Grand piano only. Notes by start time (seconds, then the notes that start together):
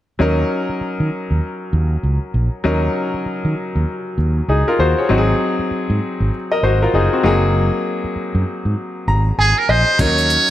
0.19 F#3 C#4 D#4 A#4
2.64 F#3 C#4 D#4 A#4
4.49 D#4 G#4
4.68 F4 A#4
4.80 F#4 C5
4.99 G#4 C#5
5.09 F#3 C4 D#4 F#4
5.18 G#4
6.52 A#4 D#5
6.64 F#4 C5
6.82 F4 A#4
6.94 D#4 G#4
7.13 C4 F#4
7.23 F#3 A#3 D#4 G#4
9.08 A#5
9.39 G#5
9.69 D#5
9.99 F#3 C#4 D#4 A#4